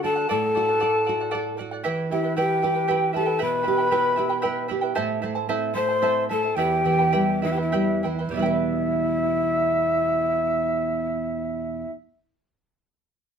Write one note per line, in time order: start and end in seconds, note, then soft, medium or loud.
0.00 0.25 D3 medium
0.00 0.16 A4 medium
0.00 0.15 D5 medium
0.04 0.29 F#4 medium
0.04 0.28 A4 medium
0.04 0.15 F#5 medium
0.04 0.28 A5 medium
0.16 0.28 D5 soft
0.16 0.28 F#5 soft
0.29 1.82 A2 medium
0.29 0.54 A4 medium
0.29 1.55 A4 medium
0.29 0.54 D5 medium
0.29 0.55 F#5 medium
0.29 1.56 A5 loud
0.55 0.82 F#4 medium
0.55 0.68 A4 medium
0.55 0.68 D5 medium
0.55 0.67 F#5 medium
0.68 0.79 D5 soft
0.68 0.80 F#5 soft
0.79 1.03 A4 medium
0.79 1.07 A4 medium
0.79 1.05 D5 medium
0.79 1.06 F#5 medium
1.05 1.19 A4 medium
1.05 1.20 D5 medium
1.05 1.19 F#5 medium
1.09 1.34 F#4 medium
1.20 1.30 D5 soft
1.20 1.30 F#5 medium
1.31 1.56 A4 medium
1.31 1.59 A4 medium
1.31 1.57 D5 medium
1.31 1.58 F#5 medium
1.57 1.85 F#4 soft
1.57 1.71 A4 medium
1.57 1.72 D5 medium
1.57 1.70 F#5 medium
1.71 1.84 D5 soft
1.71 1.85 F#5 medium
1.84 3.37 E3 medium
1.84 2.10 E4 medium
1.84 2.10 G4 medium
1.84 2.11 B4 medium
1.84 2.10 E5 medium
1.84 2.11 G5 medium
2.11 2.24 E4 medium
2.11 2.36 E4 medium
2.11 2.37 G4 medium
2.11 2.23 B4 medium
2.11 2.35 E5 medium
2.11 2.24 E5 medium
2.11 2.22 G5 medium
2.24 2.35 E4 soft
2.24 2.36 B4 soft
2.24 2.36 G5 soft
2.36 2.61 E4 medium
2.36 2.63 G4 medium
2.36 3.12 G4 medium
2.36 2.62 B4 medium
2.36 2.63 B4 medium
2.36 2.61 E5 medium
2.36 3.11 G5 medium
2.36 2.62 G5 medium
2.62 2.75 E4 medium
2.62 2.89 G4 medium
2.62 2.74 B4 medium
2.62 2.76 E5 medium
2.62 2.73 G5 medium
2.74 2.87 E4 soft
2.74 2.87 B4 soft
2.74 2.87 G5 soft
2.88 3.12 E4 medium
2.88 3.14 G4 medium
2.88 3.13 B4 medium
2.88 3.15 B4 medium
2.88 3.12 E5 medium
2.88 3.13 G5 medium
3.13 3.26 E4 medium
3.13 3.41 G4 soft
3.13 3.25 B4 medium
3.13 3.27 E5 soft
3.13 3.25 G5 medium
3.13 3.40 A5 medium
3.19 3.41 A4 medium
3.26 3.38 E4 soft
3.26 3.38 B4 soft
3.26 3.38 G5 medium
3.39 4.93 B2 medium
3.39 3.62 E4 medium
3.39 3.66 G4 medium
3.39 3.63 B4 medium
3.39 3.62 E5 medium
3.39 3.63 G5 medium
3.39 4.67 B5 loud
3.43 4.68 B4 medium
3.63 3.78 E4 medium
3.63 3.77 B4 medium
3.63 3.78 E5 medium
3.63 3.76 G5 medium
3.68 3.92 G4 medium
3.78 3.90 E4 soft
3.78 3.91 B4 soft
3.78 3.91 G5 soft
3.91 4.16 E4 medium
3.91 4.18 G4 medium
3.91 4.16 B4 medium
3.91 4.18 B4 medium
3.91 4.15 E5 medium
3.91 4.16 G5 medium
4.16 4.29 E4 medium
4.16 4.44 G4 soft
4.16 4.28 B4 medium
4.16 4.30 E5 medium
4.16 4.28 G5 medium
4.29 4.41 E4 soft
4.29 4.41 B4 soft
4.29 4.42 G5 medium
4.42 4.67 E4 medium
4.42 4.69 G4 medium
4.42 4.68 B4 medium
4.42 4.70 B4 medium
4.42 4.67 E5 medium
4.42 4.68 G5 medium
4.68 4.82 E4 medium
4.68 4.96 G4 soft
4.68 4.81 B4 medium
4.68 4.82 E5 medium
4.68 4.80 G5 medium
4.81 4.94 E4 soft
4.81 4.95 B4 medium
4.81 4.95 G5 medium
4.95 6.53 A2 medium
4.95 5.21 E4 medium
4.95 5.22 A4 medium
4.95 5.22 C5 medium
4.95 5.21 E5 medium
4.95 5.22 A5 medium
5.22 5.49 A3 soft
5.22 5.35 E4 medium
5.22 5.34 C5 medium
5.22 5.35 E5 medium
5.22 5.34 A5 medium
5.35 5.48 E4 soft
5.35 5.48 C5 medium
5.35 5.48 A5 medium
5.49 5.75 C4 medium
5.49 5.74 E4 medium
5.49 5.75 A4 medium
5.49 5.75 C5 medium
5.49 5.74 E5 medium
5.49 5.75 A5 medium
5.74 6.01 A3 medium
5.74 5.89 E4 medium
5.74 6.25 C5 medium
5.74 5.89 C5 medium
5.74 5.88 E5 medium
5.74 5.87 A5 medium
5.74 6.25 C6 medium
5.89 6.01 E4 soft
5.89 6.01 C5 soft
5.89 6.02 A5 soft
6.02 6.29 C4 medium
6.02 6.29 E4 medium
6.02 6.29 A4 medium
6.02 6.29 C5 medium
6.02 6.28 E5 medium
6.02 6.30 A5 medium
6.29 6.57 A3 medium
6.29 6.43 E4 medium
6.29 6.59 A4 medium
6.29 6.42 C5 medium
6.29 6.43 E5 medium
6.29 6.57 A5 medium
6.29 6.42 A5 medium
6.43 6.57 E4 soft
6.43 6.57 C5 soft
6.43 6.57 A5 medium
6.55 8.28 E2 medium
6.55 6.83 E4 medium
6.55 6.85 G4 medium
6.55 7.43 G4 medium
6.55 6.84 B4 medium
6.55 6.83 E5 medium
6.55 7.42 G5 medium
6.55 6.85 G5 medium
6.84 7.13 E3 soft
6.84 6.99 E4 medium
6.84 6.98 B4 medium
6.84 6.99 E5 medium
6.84 6.97 G5 medium
6.99 7.12 E4 soft
6.99 7.11 B4 soft
6.99 7.12 G5 medium
7.12 7.42 G3 medium
7.12 7.41 E4 medium
7.12 7.42 G4 medium
7.12 7.42 B4 medium
7.12 7.41 E5 medium
7.12 7.42 G5 medium
7.42 7.73 E3 soft
7.42 7.57 E4 medium
7.42 7.54 E4 medium
7.42 7.56 B4 medium
7.42 7.57 E5 medium
7.42 7.53 E5 medium
7.42 7.55 G5 medium
7.52 7.63 G4 soft
7.52 7.60 G5 medium
7.57 7.71 E4 soft
7.57 7.71 B4 soft
7.57 8.11 E5 medium
7.57 7.72 G5 soft
7.61 8.13 E4 medium
7.72 8.03 G3 medium
7.72 8.02 E4 medium
7.72 8.03 G4 medium
7.72 8.03 B4 medium
7.72 8.02 E5 medium
7.72 8.03 G5 medium
8.03 8.35 E3 soft
8.03 8.19 E4 medium
8.03 8.19 B4 medium
8.03 8.19 E5 medium
8.03 8.18 G5 medium
8.19 8.36 E4 soft
8.19 8.36 B4 soft
8.19 8.35 G5 soft
8.29 11.84 E2 medium
8.29 11.87 B2 soft
8.29 11.90 G4 medium
8.34 11.91 G3 soft
8.34 11.91 E4 medium
8.34 11.96 E4 medium
8.34 11.93 E5 medium
8.34 11.91 E5 medium
8.39 11.94 B3 soft
8.39 8.45 E4 soft
8.39 11.99 B4 medium
8.39 12.02 G5 medium
8.46 12.01 B4 medium